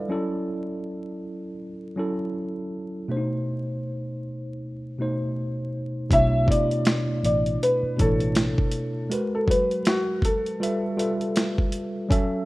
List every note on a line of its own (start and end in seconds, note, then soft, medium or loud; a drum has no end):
0.00 0.12 G3 medium
0.00 0.13 D4 medium
0.00 0.11 E4 medium
0.00 0.12 F4 medium
0.00 0.12 A4 medium
0.00 0.13 B4 medium
0.00 0.30 D5 medium
0.00 0.12 E5 medium
0.00 0.12 F5 medium
0.09 1.51 F#3 medium
0.09 1.51 C#4 medium
0.09 1.52 E4 medium
0.09 1.52 A4 medium
1.96 3.03 F#3 medium
1.96 3.04 C#4 medium
1.96 3.04 E4 medium
1.96 3.05 A4 medium
3.08 4.51 B2 medium
3.08 4.51 A3 medium
3.08 3.18 D4 medium
3.08 4.52 C5 medium
3.17 4.55 D#4 medium
4.99 6.04 B2 medium
4.99 6.05 A3 medium
4.99 6.05 D#4 medium
4.99 6.06 C5 medium
6.10 6.44 B1 loud
6.10 6.45 B2 medium
6.10 6.45 A3 medium
6.10 6.46 D4 medium
6.10 6.47 E4 medium
6.10 6.47 C#5 medium
6.10 6.45 E5 loud
6.10 kick loud
6.10 closed hi-hat medium
6.46 7.88 B2 medium
6.46 7.89 A3 medium
6.46 7.89 D4 medium
6.46 7.89 E4 medium
6.46 7.90 D5 medium
6.46 kick medium
6.51 7.20 D5 medium
6.51 closed hi-hat medium
6.71 closed hi-hat soft
6.85 finger snap medium
6.85 snare loud
6.85 closed hi-hat medium
7.23 7.57 A1 medium
7.23 7.58 D5 medium
7.23 closed hi-hat medium
7.46 closed hi-hat soft
7.63 7.95 B4 medium
7.63 closed hi-hat medium
7.83 muted fingered electric bass stroke medium
7.97 8.52 A1 loud
7.97 9.03 B2 medium
7.97 9.04 A3 medium
7.97 9.04 D4 medium
7.97 9.05 E4 medium
7.97 9.08 A4 medium
7.97 9.05 C#5 medium
7.97 kick medium
7.97 closed hi-hat medium
8.20 closed hi-hat soft
8.35 finger snap medium
8.35 snare loud
8.35 closed hi-hat medium
8.58 kick medium
8.72 closed hi-hat medium
9.10 9.45 G#3 medium
9.10 9.46 F#4 medium
9.10 9.46 A#4 medium
9.10 9.47 B4 medium
9.10 closed hi-hat medium
9.35 9.48 A4 medium
9.46 10.60 F#3 medium
9.46 10.60 F#4 medium
9.46 10.61 B4 medium
9.46 9.83 B4 medium
9.46 kick medium
9.51 closed hi-hat medium
9.71 closed hi-hat soft
9.85 10.20 F#4 medium
9.85 finger snap medium
9.85 snare loud
9.85 closed hi-hat medium
10.22 11.32 A4 medium
10.22 kick medium
10.22 closed hi-hat medium
10.46 closed hi-hat soft
10.60 10.95 G3 medium
10.60 10.96 F4 medium
10.60 10.96 A4 medium
10.60 10.97 B4 medium
10.60 10.97 E5 medium
10.60 closed hi-hat medium
10.97 12.03 G3 medium
10.97 12.04 F4 medium
10.97 12.04 A4 medium
10.97 12.04 B4 medium
10.97 12.05 E5 medium
10.97 closed hi-hat medium
11.21 closed hi-hat soft
11.36 finger snap medium
11.36 snare loud
11.36 closed hi-hat medium
11.58 kick medium
11.72 closed hi-hat medium
12.09 12.45 F#3 medium
12.09 12.45 C#4 medium
12.09 12.45 A4 medium
12.09 12.45 E5 medium
12.09 kick loud
12.09 closed hi-hat medium